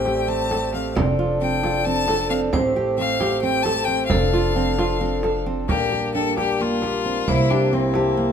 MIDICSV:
0, 0, Header, 1, 8, 480
1, 0, Start_track
1, 0, Key_signature, -1, "major"
1, 0, Tempo, 450789
1, 1019, Time_signature, 7, 3, 24, 8
1, 8861, End_track
2, 0, Start_track
2, 0, Title_t, "Violin"
2, 0, Program_c, 0, 40
2, 0, Note_on_c, 0, 79, 77
2, 307, Note_on_c, 0, 81, 93
2, 323, Note_off_c, 0, 79, 0
2, 784, Note_off_c, 0, 81, 0
2, 788, Note_on_c, 0, 77, 64
2, 1008, Note_off_c, 0, 77, 0
2, 1504, Note_on_c, 0, 79, 83
2, 1972, Note_on_c, 0, 81, 100
2, 1988, Note_off_c, 0, 79, 0
2, 2444, Note_off_c, 0, 81, 0
2, 2451, Note_on_c, 0, 77, 67
2, 2557, Note_off_c, 0, 77, 0
2, 3172, Note_on_c, 0, 77, 87
2, 3614, Note_off_c, 0, 77, 0
2, 3639, Note_on_c, 0, 79, 96
2, 3865, Note_on_c, 0, 81, 99
2, 3881, Note_off_c, 0, 79, 0
2, 4094, Note_on_c, 0, 79, 94
2, 4110, Note_off_c, 0, 81, 0
2, 4316, Note_off_c, 0, 79, 0
2, 4323, Note_on_c, 0, 77, 79
2, 5754, Note_off_c, 0, 77, 0
2, 6052, Note_on_c, 0, 67, 88
2, 6506, Note_off_c, 0, 67, 0
2, 6544, Note_on_c, 0, 69, 81
2, 6769, Note_off_c, 0, 69, 0
2, 6792, Note_on_c, 0, 67, 81
2, 7042, Note_on_c, 0, 65, 91
2, 7058, Note_off_c, 0, 67, 0
2, 7763, Note_on_c, 0, 64, 90
2, 7779, Note_off_c, 0, 65, 0
2, 7998, Note_on_c, 0, 62, 81
2, 8014, Note_off_c, 0, 64, 0
2, 8237, Note_on_c, 0, 60, 70
2, 8253, Note_off_c, 0, 62, 0
2, 8861, Note_off_c, 0, 60, 0
2, 8861, End_track
3, 0, Start_track
3, 0, Title_t, "Celesta"
3, 0, Program_c, 1, 8
3, 0, Note_on_c, 1, 67, 52
3, 0, Note_on_c, 1, 72, 49
3, 160, Note_on_c, 1, 74, 46
3, 557, Note_off_c, 1, 67, 0
3, 710, Note_off_c, 1, 72, 0
3, 850, Note_off_c, 1, 74, 0
3, 4137, Note_on_c, 1, 72, 51
3, 4577, Note_off_c, 1, 72, 0
3, 6553, Note_on_c, 1, 79, 50
3, 7291, Note_off_c, 1, 79, 0
3, 8467, Note_on_c, 1, 81, 62
3, 8861, Note_off_c, 1, 81, 0
3, 8861, End_track
4, 0, Start_track
4, 0, Title_t, "Vibraphone"
4, 0, Program_c, 2, 11
4, 0, Note_on_c, 2, 72, 79
4, 1018, Note_on_c, 2, 74, 94
4, 1074, Note_off_c, 2, 72, 0
4, 2643, Note_off_c, 2, 74, 0
4, 2697, Note_on_c, 2, 72, 95
4, 4324, Note_off_c, 2, 72, 0
4, 4374, Note_on_c, 2, 69, 77
4, 5780, Note_off_c, 2, 69, 0
4, 6065, Note_on_c, 2, 70, 74
4, 7706, Note_off_c, 2, 70, 0
4, 7752, Note_on_c, 2, 72, 79
4, 8861, Note_off_c, 2, 72, 0
4, 8861, End_track
5, 0, Start_track
5, 0, Title_t, "Harmonium"
5, 0, Program_c, 3, 20
5, 0, Note_on_c, 3, 57, 69
5, 0, Note_on_c, 3, 60, 61
5, 0, Note_on_c, 3, 67, 83
5, 1007, Note_off_c, 3, 60, 0
5, 1008, Note_off_c, 3, 57, 0
5, 1008, Note_off_c, 3, 67, 0
5, 1024, Note_on_c, 3, 69, 88
5, 1027, Note_on_c, 3, 53, 74
5, 1028, Note_on_c, 3, 62, 67
5, 2672, Note_off_c, 3, 69, 0
5, 2674, Note_off_c, 3, 53, 0
5, 2674, Note_off_c, 3, 62, 0
5, 2694, Note_on_c, 3, 57, 73
5, 2697, Note_on_c, 3, 67, 82
5, 2698, Note_on_c, 3, 60, 69
5, 4348, Note_off_c, 3, 57, 0
5, 4349, Note_off_c, 3, 67, 0
5, 4350, Note_off_c, 3, 60, 0
5, 4355, Note_on_c, 3, 62, 69
5, 4359, Note_on_c, 3, 53, 81
5, 4366, Note_on_c, 3, 69, 84
5, 6039, Note_off_c, 3, 62, 0
5, 6041, Note_off_c, 3, 53, 0
5, 6044, Note_off_c, 3, 69, 0
5, 6058, Note_on_c, 3, 55, 71
5, 6059, Note_on_c, 3, 58, 65
5, 6062, Note_on_c, 3, 62, 77
5, 7729, Note_off_c, 3, 55, 0
5, 7731, Note_off_c, 3, 62, 0
5, 7745, Note_on_c, 3, 64, 81
5, 7748, Note_on_c, 3, 48, 75
5, 8861, Note_off_c, 3, 48, 0
5, 8861, Note_off_c, 3, 58, 0
5, 8861, Note_off_c, 3, 64, 0
5, 8861, End_track
6, 0, Start_track
6, 0, Title_t, "Nylon-string guitar"
6, 0, Program_c, 4, 24
6, 64, Note_on_c, 4, 67, 69
6, 263, Note_off_c, 4, 67, 0
6, 300, Note_on_c, 4, 60, 68
6, 501, Note_off_c, 4, 60, 0
6, 540, Note_on_c, 4, 69, 66
6, 742, Note_off_c, 4, 69, 0
6, 787, Note_on_c, 4, 60, 61
6, 986, Note_off_c, 4, 60, 0
6, 1029, Note_on_c, 4, 60, 77
6, 1226, Note_off_c, 4, 60, 0
6, 1266, Note_on_c, 4, 65, 63
6, 1463, Note_off_c, 4, 65, 0
6, 1506, Note_on_c, 4, 60, 74
6, 1702, Note_off_c, 4, 60, 0
6, 1744, Note_on_c, 4, 65, 70
6, 1940, Note_off_c, 4, 65, 0
6, 1986, Note_on_c, 4, 60, 67
6, 2180, Note_off_c, 4, 60, 0
6, 2220, Note_on_c, 4, 69, 69
6, 2416, Note_off_c, 4, 69, 0
6, 2453, Note_on_c, 4, 60, 66
6, 2651, Note_off_c, 4, 60, 0
6, 2699, Note_on_c, 4, 60, 85
6, 2895, Note_off_c, 4, 60, 0
6, 2942, Note_on_c, 4, 67, 68
6, 3136, Note_off_c, 4, 67, 0
6, 3170, Note_on_c, 4, 60, 70
6, 3369, Note_off_c, 4, 60, 0
6, 3413, Note_on_c, 4, 67, 76
6, 3610, Note_off_c, 4, 67, 0
6, 3652, Note_on_c, 4, 60, 73
6, 3849, Note_off_c, 4, 60, 0
6, 3891, Note_on_c, 4, 69, 74
6, 4089, Note_off_c, 4, 69, 0
6, 4128, Note_on_c, 4, 60, 71
6, 4327, Note_off_c, 4, 60, 0
6, 4369, Note_on_c, 4, 60, 80
6, 4569, Note_off_c, 4, 60, 0
6, 4615, Note_on_c, 4, 65, 71
6, 4814, Note_off_c, 4, 65, 0
6, 4857, Note_on_c, 4, 60, 81
6, 5055, Note_off_c, 4, 60, 0
6, 5098, Note_on_c, 4, 65, 72
6, 5297, Note_off_c, 4, 65, 0
6, 5332, Note_on_c, 4, 60, 81
6, 5536, Note_off_c, 4, 60, 0
6, 5579, Note_on_c, 4, 69, 68
6, 5781, Note_off_c, 4, 69, 0
6, 5817, Note_on_c, 4, 60, 64
6, 6021, Note_off_c, 4, 60, 0
6, 6062, Note_on_c, 4, 58, 75
6, 6264, Note_off_c, 4, 58, 0
6, 6307, Note_on_c, 4, 67, 67
6, 6508, Note_off_c, 4, 67, 0
6, 6546, Note_on_c, 4, 62, 70
6, 6748, Note_off_c, 4, 62, 0
6, 6792, Note_on_c, 4, 67, 66
6, 6992, Note_off_c, 4, 67, 0
6, 7032, Note_on_c, 4, 58, 73
6, 7232, Note_off_c, 4, 58, 0
6, 7274, Note_on_c, 4, 67, 67
6, 7473, Note_off_c, 4, 67, 0
6, 7512, Note_on_c, 4, 60, 62
6, 7711, Note_off_c, 4, 60, 0
6, 7755, Note_on_c, 4, 58, 74
6, 7951, Note_off_c, 4, 58, 0
6, 7994, Note_on_c, 4, 67, 69
6, 8189, Note_off_c, 4, 67, 0
6, 8228, Note_on_c, 4, 60, 75
6, 8426, Note_off_c, 4, 60, 0
6, 8466, Note_on_c, 4, 67, 72
6, 8663, Note_off_c, 4, 67, 0
6, 8703, Note_on_c, 4, 58, 73
6, 8861, Note_off_c, 4, 58, 0
6, 8861, End_track
7, 0, Start_track
7, 0, Title_t, "Upright bass"
7, 0, Program_c, 5, 32
7, 0, Note_on_c, 5, 33, 66
7, 985, Note_off_c, 5, 33, 0
7, 1024, Note_on_c, 5, 29, 79
7, 2656, Note_off_c, 5, 29, 0
7, 2689, Note_on_c, 5, 33, 76
7, 4329, Note_off_c, 5, 33, 0
7, 4364, Note_on_c, 5, 29, 79
7, 6026, Note_off_c, 5, 29, 0
7, 6054, Note_on_c, 5, 34, 74
7, 7710, Note_off_c, 5, 34, 0
7, 7750, Note_on_c, 5, 36, 72
7, 8861, Note_off_c, 5, 36, 0
7, 8861, End_track
8, 0, Start_track
8, 0, Title_t, "Frame drum"
8, 55, Note_on_c, 9, 64, 45
8, 162, Note_off_c, 9, 64, 0
8, 545, Note_on_c, 9, 64, 49
8, 652, Note_off_c, 9, 64, 0
8, 1027, Note_on_c, 9, 64, 66
8, 1134, Note_off_c, 9, 64, 0
8, 1266, Note_on_c, 9, 64, 20
8, 1372, Note_off_c, 9, 64, 0
8, 1741, Note_on_c, 9, 64, 52
8, 1847, Note_off_c, 9, 64, 0
8, 2214, Note_on_c, 9, 64, 48
8, 2320, Note_off_c, 9, 64, 0
8, 2691, Note_on_c, 9, 64, 62
8, 2798, Note_off_c, 9, 64, 0
8, 2929, Note_on_c, 9, 64, 20
8, 3035, Note_off_c, 9, 64, 0
8, 3409, Note_on_c, 9, 64, 52
8, 3516, Note_off_c, 9, 64, 0
8, 3890, Note_on_c, 9, 64, 49
8, 3996, Note_off_c, 9, 64, 0
8, 4363, Note_on_c, 9, 64, 59
8, 4469, Note_off_c, 9, 64, 0
8, 4606, Note_on_c, 9, 64, 20
8, 4712, Note_off_c, 9, 64, 0
8, 4847, Note_on_c, 9, 64, 20
8, 4954, Note_off_c, 9, 64, 0
8, 5094, Note_on_c, 9, 64, 47
8, 5201, Note_off_c, 9, 64, 0
8, 5335, Note_on_c, 9, 64, 17
8, 5441, Note_off_c, 9, 64, 0
8, 5571, Note_on_c, 9, 64, 50
8, 5677, Note_off_c, 9, 64, 0
8, 6056, Note_on_c, 9, 64, 53
8, 6163, Note_off_c, 9, 64, 0
8, 6787, Note_on_c, 9, 64, 47
8, 6894, Note_off_c, 9, 64, 0
8, 7265, Note_on_c, 9, 64, 43
8, 7371, Note_off_c, 9, 64, 0
8, 7509, Note_on_c, 9, 64, 18
8, 7615, Note_off_c, 9, 64, 0
8, 7748, Note_on_c, 9, 64, 55
8, 7855, Note_off_c, 9, 64, 0
8, 8452, Note_on_c, 9, 64, 48
8, 8559, Note_off_c, 9, 64, 0
8, 8699, Note_on_c, 9, 64, 16
8, 8806, Note_off_c, 9, 64, 0
8, 8861, End_track
0, 0, End_of_file